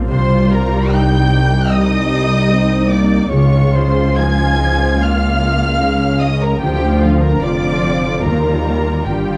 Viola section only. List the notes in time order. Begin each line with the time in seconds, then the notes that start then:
Already playing: C4
0.11 G3 F4
0.94 D#4
1.71 G3 D#4
2.11 G3
2.50 C4
2.91 A#3
3.32 G#3 F4
4.18 F3
4.59 F3
5.00 A#3
5.80 G#3 C#4
6.60 F3 F4
7.42 F3 F4
8.23 G3 F4
9.07 G3 F4